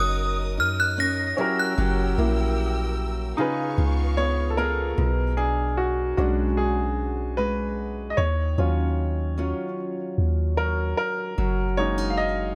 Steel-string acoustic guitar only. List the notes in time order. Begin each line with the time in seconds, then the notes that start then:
Already playing: F#3 C#4 D#4 A#4
0.58 D#4
0.98 C#4
1.38 F#3
1.78 F#3 G4
2.18 A#3 E4 G4
3.38 C#3
3.78 F4
4.18 B3
4.58 B3 F4 G#4
4.98 B2
5.38 D4
6.18 G#3 D4 F#4
7.38 G#3
8.18 D#3
8.58 C#4
9.38 F#3 C#4 F4
10.58 F#3
11.38 F#3
11.78 C#4
11.98 D#4